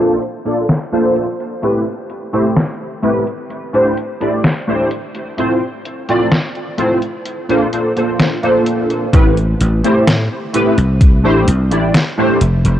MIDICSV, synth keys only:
0, 0, Header, 1, 2, 480
1, 0, Start_track
1, 0, Tempo, 937500
1, 835, Time_signature, 4, 2, 24, 8
1, 6553, End_track
2, 0, Start_track
2, 0, Title_t, "Synth keys"
2, 0, Program_c, 0, 88
2, 0, Note_on_c, 0, 58, 89
2, 0, Note_on_c, 0, 62, 83
2, 0, Note_on_c, 0, 65, 83
2, 0, Note_on_c, 0, 69, 84
2, 0, Note_on_c, 0, 72, 100
2, 98, Note_off_c, 0, 58, 0
2, 99, Note_off_c, 0, 62, 0
2, 100, Note_off_c, 0, 65, 0
2, 101, Note_off_c, 0, 69, 0
2, 102, Note_off_c, 0, 72, 0
2, 232, Note_on_c, 0, 58, 73
2, 233, Note_on_c, 0, 62, 68
2, 235, Note_on_c, 0, 65, 69
2, 237, Note_on_c, 0, 69, 69
2, 239, Note_on_c, 0, 74, 81
2, 338, Note_off_c, 0, 58, 0
2, 338, Note_off_c, 0, 62, 0
2, 339, Note_off_c, 0, 65, 0
2, 340, Note_off_c, 0, 69, 0
2, 341, Note_off_c, 0, 74, 0
2, 472, Note_on_c, 0, 58, 91
2, 474, Note_on_c, 0, 62, 84
2, 475, Note_on_c, 0, 65, 86
2, 477, Note_on_c, 0, 69, 86
2, 479, Note_on_c, 0, 72, 101
2, 641, Note_off_c, 0, 58, 0
2, 642, Note_off_c, 0, 62, 0
2, 643, Note_off_c, 0, 65, 0
2, 644, Note_off_c, 0, 69, 0
2, 645, Note_off_c, 0, 72, 0
2, 829, Note_on_c, 0, 57, 83
2, 832, Note_on_c, 0, 60, 74
2, 834, Note_on_c, 0, 64, 74
2, 836, Note_on_c, 0, 67, 76
2, 837, Note_on_c, 0, 71, 87
2, 938, Note_off_c, 0, 57, 0
2, 940, Note_off_c, 0, 60, 0
2, 940, Note_off_c, 0, 64, 0
2, 942, Note_off_c, 0, 67, 0
2, 942, Note_off_c, 0, 71, 0
2, 1192, Note_on_c, 0, 57, 96
2, 1194, Note_on_c, 0, 60, 82
2, 1195, Note_on_c, 0, 64, 83
2, 1198, Note_on_c, 0, 67, 85
2, 1200, Note_on_c, 0, 72, 101
2, 1298, Note_off_c, 0, 57, 0
2, 1299, Note_off_c, 0, 60, 0
2, 1299, Note_off_c, 0, 64, 0
2, 1301, Note_off_c, 0, 67, 0
2, 1302, Note_off_c, 0, 72, 0
2, 1550, Note_on_c, 0, 57, 89
2, 1552, Note_on_c, 0, 60, 82
2, 1555, Note_on_c, 0, 64, 78
2, 1556, Note_on_c, 0, 67, 83
2, 1558, Note_on_c, 0, 71, 95
2, 1659, Note_off_c, 0, 57, 0
2, 1660, Note_off_c, 0, 60, 0
2, 1661, Note_off_c, 0, 64, 0
2, 1661, Note_off_c, 0, 67, 0
2, 1663, Note_off_c, 0, 71, 0
2, 1911, Note_on_c, 0, 57, 92
2, 1913, Note_on_c, 0, 62, 84
2, 1915, Note_on_c, 0, 64, 82
2, 1917, Note_on_c, 0, 67, 89
2, 1919, Note_on_c, 0, 72, 101
2, 2017, Note_off_c, 0, 57, 0
2, 2018, Note_off_c, 0, 62, 0
2, 2019, Note_off_c, 0, 64, 0
2, 2020, Note_off_c, 0, 67, 0
2, 2021, Note_off_c, 0, 72, 0
2, 2151, Note_on_c, 0, 57, 77
2, 2154, Note_on_c, 0, 62, 66
2, 2155, Note_on_c, 0, 64, 68
2, 2157, Note_on_c, 0, 67, 67
2, 2160, Note_on_c, 0, 74, 84
2, 2257, Note_off_c, 0, 57, 0
2, 2259, Note_off_c, 0, 62, 0
2, 2260, Note_off_c, 0, 64, 0
2, 2260, Note_off_c, 0, 67, 0
2, 2262, Note_off_c, 0, 74, 0
2, 2392, Note_on_c, 0, 57, 93
2, 2394, Note_on_c, 0, 62, 85
2, 2396, Note_on_c, 0, 64, 87
2, 2398, Note_on_c, 0, 67, 82
2, 2400, Note_on_c, 0, 72, 102
2, 2499, Note_off_c, 0, 57, 0
2, 2499, Note_off_c, 0, 62, 0
2, 2501, Note_off_c, 0, 64, 0
2, 2501, Note_off_c, 0, 67, 0
2, 2503, Note_off_c, 0, 72, 0
2, 2751, Note_on_c, 0, 57, 81
2, 2753, Note_on_c, 0, 60, 75
2, 2755, Note_on_c, 0, 64, 74
2, 2757, Note_on_c, 0, 65, 76
2, 2759, Note_on_c, 0, 72, 89
2, 2859, Note_off_c, 0, 57, 0
2, 2860, Note_off_c, 0, 60, 0
2, 2861, Note_off_c, 0, 64, 0
2, 2862, Note_off_c, 0, 65, 0
2, 2863, Note_off_c, 0, 72, 0
2, 3114, Note_on_c, 0, 57, 94
2, 3116, Note_on_c, 0, 60, 82
2, 3118, Note_on_c, 0, 64, 86
2, 3119, Note_on_c, 0, 65, 87
2, 3122, Note_on_c, 0, 74, 102
2, 3219, Note_off_c, 0, 57, 0
2, 3220, Note_off_c, 0, 60, 0
2, 3221, Note_off_c, 0, 64, 0
2, 3222, Note_off_c, 0, 65, 0
2, 3223, Note_off_c, 0, 74, 0
2, 3471, Note_on_c, 0, 57, 89
2, 3473, Note_on_c, 0, 60, 82
2, 3475, Note_on_c, 0, 64, 82
2, 3477, Note_on_c, 0, 65, 84
2, 3479, Note_on_c, 0, 72, 98
2, 3579, Note_off_c, 0, 57, 0
2, 3580, Note_off_c, 0, 60, 0
2, 3581, Note_off_c, 0, 64, 0
2, 3582, Note_off_c, 0, 65, 0
2, 3583, Note_off_c, 0, 72, 0
2, 3833, Note_on_c, 0, 58, 94
2, 3835, Note_on_c, 0, 62, 88
2, 3837, Note_on_c, 0, 65, 85
2, 3839, Note_on_c, 0, 69, 86
2, 3841, Note_on_c, 0, 72, 100
2, 3929, Note_off_c, 0, 58, 0
2, 3931, Note_off_c, 0, 62, 0
2, 3932, Note_off_c, 0, 65, 0
2, 3933, Note_off_c, 0, 69, 0
2, 3933, Note_off_c, 0, 72, 0
2, 3953, Note_on_c, 0, 58, 72
2, 3955, Note_on_c, 0, 62, 64
2, 3957, Note_on_c, 0, 65, 63
2, 3958, Note_on_c, 0, 69, 63
2, 3960, Note_on_c, 0, 72, 78
2, 4046, Note_off_c, 0, 58, 0
2, 4047, Note_off_c, 0, 62, 0
2, 4048, Note_off_c, 0, 65, 0
2, 4049, Note_off_c, 0, 69, 0
2, 4050, Note_off_c, 0, 72, 0
2, 4074, Note_on_c, 0, 58, 71
2, 4076, Note_on_c, 0, 62, 65
2, 4078, Note_on_c, 0, 65, 63
2, 4080, Note_on_c, 0, 69, 66
2, 4082, Note_on_c, 0, 72, 80
2, 4286, Note_off_c, 0, 58, 0
2, 4287, Note_off_c, 0, 62, 0
2, 4288, Note_off_c, 0, 65, 0
2, 4289, Note_off_c, 0, 69, 0
2, 4290, Note_off_c, 0, 72, 0
2, 4314, Note_on_c, 0, 58, 93
2, 4316, Note_on_c, 0, 62, 83
2, 4318, Note_on_c, 0, 65, 85
2, 4320, Note_on_c, 0, 69, 86
2, 4322, Note_on_c, 0, 72, 98
2, 4645, Note_off_c, 0, 58, 0
2, 4646, Note_off_c, 0, 62, 0
2, 4647, Note_off_c, 0, 65, 0
2, 4648, Note_off_c, 0, 69, 0
2, 4649, Note_off_c, 0, 72, 0
2, 4673, Note_on_c, 0, 57, 88
2, 4674, Note_on_c, 0, 60, 81
2, 4676, Note_on_c, 0, 64, 78
2, 4678, Note_on_c, 0, 67, 78
2, 4680, Note_on_c, 0, 71, 95
2, 4780, Note_off_c, 0, 57, 0
2, 4781, Note_off_c, 0, 60, 0
2, 4782, Note_off_c, 0, 64, 0
2, 4783, Note_off_c, 0, 67, 0
2, 4784, Note_off_c, 0, 71, 0
2, 5033, Note_on_c, 0, 57, 98
2, 5035, Note_on_c, 0, 60, 90
2, 5038, Note_on_c, 0, 64, 89
2, 5039, Note_on_c, 0, 67, 93
2, 5041, Note_on_c, 0, 72, 104
2, 5138, Note_off_c, 0, 57, 0
2, 5139, Note_off_c, 0, 60, 0
2, 5141, Note_off_c, 0, 64, 0
2, 5141, Note_off_c, 0, 67, 0
2, 5142, Note_off_c, 0, 72, 0
2, 5392, Note_on_c, 0, 57, 94
2, 5393, Note_on_c, 0, 60, 87
2, 5395, Note_on_c, 0, 64, 85
2, 5398, Note_on_c, 0, 67, 86
2, 5400, Note_on_c, 0, 71, 102
2, 5499, Note_off_c, 0, 57, 0
2, 5500, Note_off_c, 0, 60, 0
2, 5501, Note_off_c, 0, 64, 0
2, 5503, Note_off_c, 0, 67, 0
2, 5503, Note_off_c, 0, 71, 0
2, 5752, Note_on_c, 0, 57, 95
2, 5755, Note_on_c, 0, 62, 90
2, 5756, Note_on_c, 0, 64, 91
2, 5758, Note_on_c, 0, 67, 89
2, 5759, Note_on_c, 0, 72, 114
2, 5858, Note_off_c, 0, 57, 0
2, 5859, Note_off_c, 0, 62, 0
2, 5860, Note_off_c, 0, 64, 0
2, 5861, Note_off_c, 0, 67, 0
2, 5861, Note_off_c, 0, 72, 0
2, 5993, Note_on_c, 0, 57, 78
2, 5994, Note_on_c, 0, 62, 72
2, 5997, Note_on_c, 0, 64, 74
2, 5999, Note_on_c, 0, 67, 71
2, 6001, Note_on_c, 0, 74, 87
2, 6098, Note_off_c, 0, 57, 0
2, 6099, Note_off_c, 0, 62, 0
2, 6100, Note_off_c, 0, 64, 0
2, 6101, Note_off_c, 0, 67, 0
2, 6102, Note_off_c, 0, 74, 0
2, 6234, Note_on_c, 0, 57, 103
2, 6235, Note_on_c, 0, 62, 92
2, 6237, Note_on_c, 0, 64, 90
2, 6240, Note_on_c, 0, 67, 92
2, 6241, Note_on_c, 0, 72, 106
2, 6339, Note_off_c, 0, 57, 0
2, 6340, Note_off_c, 0, 62, 0
2, 6341, Note_off_c, 0, 64, 0
2, 6342, Note_off_c, 0, 67, 0
2, 6343, Note_off_c, 0, 72, 0
2, 6553, End_track
0, 0, End_of_file